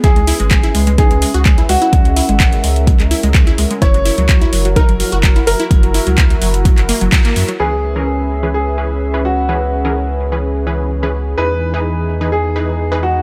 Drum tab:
HH |xxoxxxoxxxoxxxox|xxoxxxoxxxoxxxox|xxoxxxoxxxoxxxox|xxoxxxoxxxoxxxox|
CP |----x-------x---|----x----x--x---|----x-------x---|----x----x--x---|
BD |o---o---o---o---|o---o---o---o---|o---o---o---o---|o---o---o---o---|

HH |----------------|----------------|----------------|
CP |----------------|----------------|----------------|
BD |----------------|----------------|----------------|